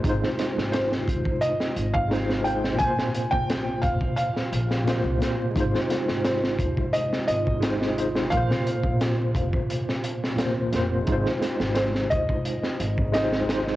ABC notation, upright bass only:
X:1
M:4/4
L:1/16
Q:1/4=87
K:Ab
V:1 name="Upright bass" clef=bass
A,,, z2 A,,,3 E,, z3 A,,,6 | B,,, z2 B,,,3 F,,, z3 B,,,3 C,, z2 | A,,, z2 A,,,3 E,, z3 A,,,6 | B,,, z2 B,,,3 F,,, z6 z F,,,2 |
A,,, z2 A,,,3 E,, z3 A,,,6 |]